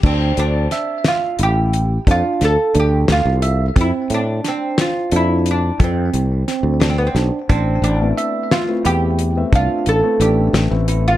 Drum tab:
CC |x----------|-----------|-----------|
HH |-xxxxxxxxxx|xxxxxxxxxxx|xxxxxxxxxxx|
SD |--oo---o-o-|--oo----ooo|---o-----o-|
BD |o-----o----|o-----o----|o-----o----|